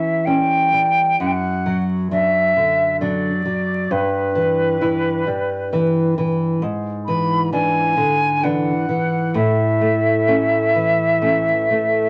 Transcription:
0.00 1.15 E3 soft
0.00 0.26 C#4 soft
0.00 0.27 E5 medium
0.25 0.69 G3 soft
0.25 0.69 C#4 soft
0.25 1.19 G5 medium
0.73 1.19 G3 soft
1.20 3.88 F#2 soft
1.20 1.28 F#5 medium
1.27 1.33 G5 medium
1.32 1.84 F#5 medium
1.66 2.10 F#3 soft
2.11 2.52 F#3 soft
2.11 2.52 D4 soft
2.11 2.97 E5 medium
2.56 3.28 D3 soft
3.00 3.42 F#3 soft
3.00 3.43 D4 soft
3.00 3.93 D5 medium
3.46 3.91 F#3 soft
3.91 6.58 G2 soft
3.91 6.17 B4 medium
4.35 4.80 E3 soft
4.81 5.23 E3 soft
4.81 5.23 E4 soft
5.27 5.99 G3 soft
5.73 6.13 E3 soft
5.73 6.13 E4 soft
6.18 6.62 E3 soft
6.62 9.31 G#2 soft
7.06 7.51 E3 soft
7.06 7.49 B5 medium
7.52 7.94 E3 soft
7.52 7.94 D4 soft
7.52 8.45 G#5 medium
7.97 8.70 D3 soft
8.43 8.85 E3 soft
8.43 8.85 D4 soft
8.43 9.35 F#5 medium
8.89 9.35 E3 soft
9.34 12.09 A2 medium
9.34 12.09 E5 medium
9.81 10.27 A3 soft
10.28 10.71 A3 soft
10.28 10.71 C#4 soft
10.75 11.51 E3 soft
11.22 11.66 A3 soft
11.22 11.66 C#4 soft
11.70 12.09 A3 soft

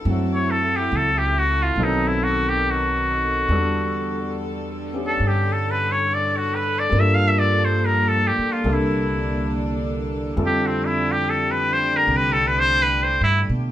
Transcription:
0.00 1.72 A4 medium
0.05 0.87 F#2 medium
0.05 1.77 F#3 soft
0.05 1.78 A3 soft
0.05 1.78 C4 soft
0.05 1.76 E4 medium
0.10 1.79 E4 soft
0.10 1.80 F#4 medium
0.34 0.52 C#5 medium
0.51 0.78 A4 medium
0.76 0.98 G4 medium
0.92 1.73 C#2 medium
0.96 1.19 A4 medium
1.18 1.40 G4 medium
1.39 1.64 F#4 medium
1.62 1.85 F4 medium
1.76 3.45 B1 medium
1.76 3.48 D#3 medium
1.76 3.50 F#3 medium
1.76 3.49 B3 soft
1.76 3.50 C4 medium
1.76 3.50 D#4 medium
1.76 10.33 A4 medium
1.80 2.09 D#4 medium
1.80 3.51 A4 medium
2.07 2.25 E4 medium
2.23 2.50 F#4 medium
2.49 2.72 G4 medium
2.71 4.39 F#4 medium
3.49 5.17 E2 medium
3.49 6.90 D3 medium
3.49 6.88 G3 soft
3.49 6.90 G3 medium
3.49 4.92 B3 soft
3.49 6.93 D4 soft
3.49 6.94 F#4 soft
3.49 6.94 A4 medium
4.93 6.93 B3 soft
4.93 6.93 C#4 soft
4.93 6.94 E4 soft
4.93 6.94 G4 soft
5.07 5.29 A4 medium
5.20 6.88 G2 medium
5.28 5.54 G4 medium
5.52 5.72 A4 medium
5.71 5.94 B4 medium
5.92 6.15 C#5 medium
6.14 6.38 D5 medium
6.37 6.57 F#4 medium
6.55 6.81 B4 medium
6.79 7.01 D5 medium
6.89 8.33 G2 medium
6.89 8.63 G3 medium
6.89 8.64 A#3 medium
6.94 8.64 F3 medium
6.94 10.33 A#3 medium
6.94 8.64 D4 medium
6.94 8.67 F4 soft
7.00 8.64 A4 medium
7.00 7.16 E5 medium
7.15 7.30 F5 medium
7.28 7.40 E5 medium
7.39 7.67 D5 medium
7.65 7.87 C5 medium
7.85 8.10 A#4 medium
8.09 8.29 A4 medium
8.27 8.54 G4 medium
8.38 muted upright bass stroke soft
8.52 8.75 F4 medium
8.64 10.31 C2 medium
8.64 13.72 D3 medium
8.64 10.35 G3 medium
8.64 10.36 A#3 soft
8.64 10.36 D4 soft
8.64 10.35 D4 medium
8.64 10.36 E4 soft
8.64 10.36 A4 medium
8.74 9.55 E4 medium
10.36 12.03 F2 medium
10.36 13.72 G3 soft
10.36 13.72 A3 medium
10.36 13.72 C4 soft
10.36 13.72 E4 soft
10.36 13.72 F4 soft
10.36 13.72 G4 medium
10.36 13.72 A4 medium
10.46 10.69 G4 medium
10.67 10.87 C4 medium
10.85 11.13 E4 medium
11.12 11.31 G4 medium
11.30 11.53 A4 medium
11.51 11.75 B4 medium
11.73 11.98 C5 loud
11.97 12.18 A#4 medium
12.07 13.17 C2 medium
12.17 12.34 B4 medium
12.33 12.49 A4 medium
12.47 12.61 B4 medium
12.59 12.84 C5 loud
12.82 13.05 B4 medium
13.03 13.23 C5 medium
13.21 13.47 G2 medium
13.21 13.41 E4 medium
13.49 13.72 B2 medium

